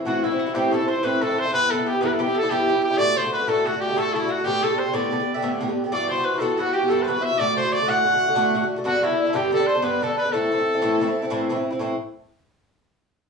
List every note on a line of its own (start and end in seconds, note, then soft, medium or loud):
0.04 0.23 A2 medium
0.04 0.24 E3 medium
0.04 0.24 C4 medium
0.04 0.25 E4 medium
0.04 0.24 F#4 medium
0.04 0.26 F#4 loud
0.04 0.24 F#4 medium
0.23 0.31 A2 medium
0.23 0.32 E3 medium
0.23 0.31 C4 medium
0.23 0.55 E4 medium
0.23 0.38 E4 medium
0.23 0.56 E4 medium
0.23 0.30 E4 medium
0.31 0.48 E3 soft
0.31 0.47 C4 medium
0.31 0.45 E4 medium
0.39 0.55 F#4 medium
0.47 0.53 E3 soft
0.47 0.55 C4 soft
0.47 0.54 E4 medium
0.53 0.70 A2 medium
0.53 0.71 E3 medium
0.53 0.72 C4 medium
0.53 0.73 E4 medium
0.53 0.71 G4 medium
0.53 0.74 G4 medium
0.53 0.71 G4 medium
0.71 0.80 A2 medium
0.71 0.80 E3 medium
0.71 0.80 C4 medium
0.71 0.79 E4 medium
0.71 0.88 A4 medium
0.71 0.87 A4 medium
0.71 0.90 A4 loud
0.80 0.97 E3 soft
0.80 0.96 C4 medium
0.80 0.94 E4 soft
0.87 1.02 C5 medium
0.87 1.06 C5 medium
0.96 1.02 E3 soft
0.96 1.03 C4 soft
0.96 1.03 E4 medium
1.02 1.20 A2 medium
1.02 1.21 E3 medium
1.02 1.22 C4 medium
1.02 1.22 E4 medium
1.02 1.21 B4 medium
1.02 1.20 B4 medium
1.02 1.24 B4 loud
1.20 1.29 A2 medium
1.20 1.29 E3 medium
1.20 1.28 C4 medium
1.20 1.27 E4 medium
1.20 1.49 A4 medium
1.20 1.36 A4 medium
1.20 1.41 A4 loud
1.29 1.45 E3 soft
1.29 1.45 C4 soft
1.29 1.43 E4 medium
1.37 1.51 C5 medium
1.37 1.53 C5 loud
1.44 1.53 E3 soft
1.44 1.53 C4 medium
1.44 1.52 E4 medium
1.51 1.70 G2 medium
1.51 1.71 E3 medium
1.51 1.71 B3 medium
1.51 1.71 E4 medium
1.51 1.68 B4 medium
1.51 1.87 B4 medium
1.51 1.72 B4 loud
1.70 1.78 G2 medium
1.70 1.79 E3 medium
1.70 1.78 B3 medium
1.70 1.77 E4 medium
1.70 1.84 A4 medium
1.70 1.89 A4 loud
1.78 1.94 E3 soft
1.78 1.94 B3 medium
1.78 1.92 E4 soft
1.86 2.00 G4 medium
1.86 2.04 G4 loud
1.93 2.01 E3 soft
1.93 2.01 B3 soft
1.93 2.01 E4 medium
2.01 2.18 G2 medium
2.01 2.18 E3 loud
2.01 2.19 B3 medium
2.01 2.20 E4 medium
2.01 2.13 B4 medium
2.01 2.20 B4 medium
2.01 2.15 B4 medium
2.14 2.23 A4 medium
2.14 2.19 A4 medium
2.19 2.27 G2 medium
2.19 2.27 E3 medium
2.19 2.27 B3 medium
2.19 2.26 E4 medium
2.19 2.33 G4 medium
2.19 2.35 G4 medium
2.19 2.40 G4 loud
2.27 2.43 E3 medium
2.27 2.43 B3 medium
2.27 2.41 E4 medium
2.35 2.50 A4 medium
2.35 2.49 A4 medium
2.35 2.52 A4 loud
2.43 2.49 E3 soft
2.43 2.50 B3 medium
2.43 2.50 E4 medium
2.50 2.67 G2 medium
2.50 2.68 E3 medium
2.50 2.68 B3 medium
2.50 2.69 E4 medium
2.50 2.80 G4 loud
2.50 2.83 G4 loud
2.50 2.80 G4 medium
2.68 2.76 G2 medium
2.68 2.76 E3 medium
2.68 2.75 B3 medium
2.68 2.74 E4 medium
2.75 2.91 E3 soft
2.75 2.90 B3 soft
2.75 2.89 E4 medium
2.82 2.97 G4 medium
2.82 2.99 G4 loud
2.90 2.98 E3 soft
2.90 2.99 B3 medium
2.90 2.98 E4 medium
2.97 3.14 A2 medium
2.97 3.15 D3 medium
2.97 3.16 A3 medium
2.97 3.16 F#4 medium
2.97 3.19 D5 loud
2.97 3.15 D5 loud
3.15 3.24 A2 medium
3.15 3.24 D3 medium
3.15 3.24 A3 medium
3.15 3.23 F#4 medium
3.15 3.30 C5 medium
3.15 3.31 C5 medium
3.15 3.32 C5 loud
3.24 3.40 D3 soft
3.24 3.39 A3 medium
3.24 3.38 F#4 medium
3.31 3.47 B4 medium
3.31 3.51 B4 loud
3.31 3.47 B4 medium
3.39 3.47 D3 soft
3.39 3.47 A3 medium
3.39 3.47 F#4 medium
3.47 3.64 A2 medium
3.47 3.65 D3 medium
3.47 3.66 A3 medium
3.47 3.66 F#4 medium
3.47 3.64 A4 medium
3.47 3.65 A4 medium
3.47 3.68 A4 loud
3.65 3.73 A2 medium
3.65 3.74 D3 medium
3.65 3.73 A3 medium
3.65 3.80 F#4 medium
3.65 3.82 F#4 loud
3.65 3.71 F#4 medium
3.73 3.89 D3 medium
3.73 3.88 A3 medium
3.73 3.87 F#4 medium
3.81 4.00 G4 loud
3.81 3.97 G4 medium
3.81 3.96 G4 medium
3.88 3.95 D3 medium
3.88 3.96 A3 medium
3.88 3.96 F#4 medium
3.96 4.13 A2 medium
3.96 4.13 D3 medium
3.96 4.14 A3 medium
3.96 4.15 F#4 loud
3.96 4.13 A4 loud
3.96 4.14 A4 medium
3.96 4.15 A4 loud
4.14 4.22 A2 medium
4.14 4.22 D3 medium
4.14 4.22 A3 medium
4.14 4.33 E4 loud
4.14 4.30 E4 medium
4.14 4.28 E4 medium
4.14 4.21 F#4 medium
4.22 4.38 D3 soft
4.22 4.38 A3 soft
4.22 4.37 F#4 medium
4.29 4.44 F#4 medium
4.29 4.45 F#4 medium
4.29 4.47 F#4 medium
4.38 4.45 D3 soft
4.38 4.46 A3 medium
4.38 4.45 F#4 medium
4.44 4.61 A2 medium
4.44 4.62 D3 medium
4.44 4.63 B3 medium
4.44 4.63 G4 medium
4.44 4.65 G4 loud
4.44 4.63 G4 medium
4.62 4.70 A2 medium
4.62 4.71 D3 medium
4.62 4.71 B3 medium
4.62 4.69 G4 medium
4.62 4.77 A4 medium
4.62 4.80 A4 loud
4.62 4.78 A4 medium
4.71 4.87 D3 soft
4.71 4.85 B3 medium
4.71 4.84 G4 medium
4.78 4.92 C5 medium
4.78 4.94 C5 medium
4.78 4.96 C5 loud
4.85 4.92 D3 medium
4.85 4.93 B3 soft
4.85 4.93 G4 medium
4.93 5.10 A2 medium
4.93 5.11 D3 medium
4.93 5.12 B3 medium
4.93 5.12 G4 medium
4.93 5.30 D5 medium
4.93 5.49 D5 medium
4.93 5.31 D5 medium
5.11 5.19 A2 medium
5.11 5.20 D3 medium
5.11 5.20 B3 medium
5.11 5.18 G4 medium
5.19 5.35 D3 soft
5.19 5.34 B3 medium
5.19 5.33 G4 medium
5.34 5.42 D3 medium
5.34 5.42 B3 medium
5.34 5.42 G4 medium
5.34 5.49 E5 medium
5.42 5.59 A2 loud
5.42 5.60 D3 medium
5.42 5.61 B3 medium
5.42 5.61 G4 loud
5.60 5.68 A2 medium
5.60 5.69 D3 medium
5.60 5.68 B3 medium
5.60 5.67 G4 medium
5.68 5.85 D3 soft
5.68 5.84 B3 medium
5.68 5.83 G4 medium
5.84 5.92 D3 soft
5.84 5.91 B3 medium
5.84 5.92 G4 medium
5.92 6.08 G2 medium
5.92 6.09 E3 medium
5.92 6.10 B3 medium
5.92 6.10 F#4 medium
5.92 6.10 D5 medium
5.92 6.07 D5 medium
5.92 6.09 D5 loud
6.08 6.17 G2 medium
6.08 6.18 E3 medium
6.08 6.18 B3 medium
6.08 6.23 C5 medium
6.08 6.41 C5 medium
6.08 6.27 C5 loud
6.12 6.16 F#4 medium
6.18 6.34 E3 soft
6.18 6.34 B3 soft
6.18 6.33 F#4 medium
6.23 6.37 B4 medium
6.23 6.41 B4 medium
6.34 6.40 E3 soft
6.34 6.40 B3 soft
6.34 6.41 F#4 medium
6.34 6.56 A4 medium
6.40 6.57 G2 medium
6.40 6.58 E3 medium
6.40 6.59 B3 medium
6.40 6.59 F#4 medium
6.40 6.61 A4 medium
6.40 6.59 A4 medium
6.57 6.66 G2 medium
6.57 6.67 E3 medium
6.57 6.66 B3 medium
6.57 6.73 F#4 medium
6.57 6.75 F#4 loud
6.57 6.65 F#4 medium
6.66 6.82 E3 soft
6.66 6.81 B3 medium
6.66 6.81 F#4 medium
6.73 6.90 G4 medium
6.73 6.88 G4 medium
6.73 6.91 G4 medium
6.82 6.90 E3 soft
6.82 6.90 B3 medium
6.82 6.89 F#4 medium
6.88 7.06 G2 medium
6.88 7.07 E3 medium
6.88 7.08 B3 medium
6.88 7.08 F#4 medium
6.88 7.04 A4 medium
6.88 7.08 A4 loud
6.88 7.04 A4 loud
7.02 7.20 B4 medium
7.02 7.09 C5 medium
7.07 7.15 G2 medium
7.07 7.16 E3 medium
7.07 7.16 B3 medium
7.07 7.14 F#4 medium
7.07 7.21 B4 medium
7.07 7.25 B4 loud
7.16 7.32 E3 soft
7.16 7.31 B3 medium
7.16 7.29 F#4 soft
7.21 7.36 E5 medium
7.21 7.39 E5 medium
7.21 7.40 E5 loud
7.31 7.39 E3 soft
7.31 7.39 B3 soft
7.31 7.38 F#4 medium
7.37 7.55 A2 medium
7.37 7.56 D3 medium
7.37 7.57 A3 medium
7.37 7.57 F#4 medium
7.37 7.54 D5 medium
7.37 7.57 D5 loud
7.56 7.64 A2 medium
7.56 7.64 D3 medium
7.56 7.64 A3 medium
7.56 7.63 F#4 medium
7.56 7.71 C5 medium
7.56 7.74 C5 loud
7.64 7.80 D3 soft
7.64 7.80 A3 soft
7.64 7.79 F#4 medium
7.72 7.86 D5 medium
7.72 7.91 D5 loud
7.72 7.87 D5 medium
7.80 7.87 D3 soft
7.80 7.87 A3 medium
7.80 7.87 F#4 medium
7.86 8.03 A2 medium
7.86 8.04 D3 medium
7.86 8.05 A3 loud
7.86 8.06 F#4 medium
7.86 8.65 F#5 loud
7.86 8.66 F#5 loud
7.86 8.71 F#5 loud
8.04 8.13 A2 medium
8.04 8.13 D3 medium
8.04 8.12 A3 medium
8.04 8.11 F#4 medium
8.12 8.29 D3 soft
8.12 8.28 A3 medium
8.12 8.26 F#4 medium
8.28 8.34 D3 medium
8.28 8.35 A3 medium
8.28 8.35 F#4 medium
8.35 8.53 A2 medium
8.35 8.54 D3 loud
8.35 8.54 A3 loud
8.35 8.54 F#4 loud
8.55 8.62 A2 medium
8.55 8.62 D3 medium
8.55 8.62 A3 medium
8.55 8.61 F#4 medium
8.62 8.77 D3 soft
8.62 8.76 A3 medium
8.62 8.75 F#4 medium
8.76 8.84 D3 soft
8.76 8.85 A3 medium
8.76 8.85 F#4 medium
8.84 9.01 G2 medium
8.84 9.02 D3 medium
8.84 9.02 B3 medium
8.84 9.03 D4 medium
8.84 9.02 F#4 medium
8.84 9.04 F#4 medium
8.84 9.05 F#4 loud
9.02 9.10 G2 medium
9.02 9.10 D3 medium
9.02 9.09 B3 medium
9.02 9.08 D4 medium
9.02 9.37 E4 loud
9.02 9.29 E4 medium
9.02 9.32 E4 medium
9.09 9.26 D3 soft
9.09 9.25 B3 medium
9.09 9.24 D4 medium
9.25 9.33 D3 medium
9.25 9.32 B3 soft
9.25 9.33 D4 medium
9.30 9.50 G2 medium
9.30 9.51 B3 medium
9.30 9.35 A4 medium
9.34 9.51 D3 medium
9.34 9.52 D4 loud
9.34 9.43 G4 medium
9.34 9.53 G4 loud
9.34 9.66 G4 medium
9.51 9.59 G2 medium
9.51 9.60 D3 medium
9.51 9.59 B3 medium
9.51 9.58 D4 medium
9.51 9.67 A4 medium
9.51 9.68 A4 loud
9.59 9.76 D3 soft
9.59 9.75 B3 medium
9.59 9.74 D4 medium
9.67 9.81 C5 medium
9.67 9.85 C5 medium
9.67 9.83 C5 loud
9.75 9.81 D3 medium
9.75 9.82 B3 soft
9.75 9.82 D4 medium
9.82 10.00 G2 medium
9.82 10.01 D3 medium
9.82 10.01 B3 medium
9.82 10.01 D4 medium
9.82 10.05 B4 loud
9.82 10.02 B4 medium
9.82 10.00 B4 medium
10.01 10.09 G2 medium
10.01 10.09 D3 medium
10.01 10.09 B3 medium
10.01 10.08 D4 medium
10.01 10.17 A4 medium
10.01 10.18 A4 medium
10.09 10.25 D3 soft
10.09 10.25 B3 soft
10.09 10.23 D4 medium
10.17 10.31 B4 medium
10.17 10.34 B4 loud
10.17 10.32 B4 medium
10.24 10.33 D3 soft
10.24 10.33 B3 medium
10.24 10.32 D4 medium
10.30 10.50 A2 medium
10.30 10.51 E3 medium
10.30 10.51 C4 medium
10.30 11.43 A4 medium
10.30 11.48 A4 loud
10.30 11.45 A4 medium
10.34 10.51 E4 medium
10.51 10.58 A2 medium
10.51 10.59 E3 medium
10.51 10.58 C4 medium
10.51 10.57 E4 medium
10.58 10.74 E3 medium
10.58 10.74 C4 medium
10.58 10.73 E4 medium
10.74 10.81 E3 medium
10.74 10.81 C4 medium
10.74 10.81 E4 medium
10.82 10.99 A2 loud
10.82 11.00 E3 medium
10.82 11.00 C4 loud
10.82 11.00 E4 loud
11.00 11.07 A2 medium
11.00 11.08 E3 medium
11.00 11.07 C4 medium
11.00 11.06 E4 medium
11.07 11.23 E3 medium
11.07 11.22 C4 medium
11.07 11.21 E4 medium
11.22 11.30 E3 medium
11.22 11.30 C4 medium
11.22 11.30 E4 medium
11.30 11.48 A2 loud
11.30 11.49 E3 loud
11.30 11.49 C4 loud
11.30 11.49 E4 loud
11.49 11.57 A2 medium
11.49 11.56 E3 medium
11.49 11.56 C4 medium
11.49 11.55 E4 medium
11.56 11.72 E3 soft
11.56 11.71 C4 soft
11.56 11.69 E4 medium
11.71 11.79 E3 soft
11.71 11.80 C4 medium
11.71 11.79 E4 medium
11.79 11.94 A2 medium
11.79 11.94 E3 medium
11.79 11.95 C4 medium
11.79 11.95 E4 medium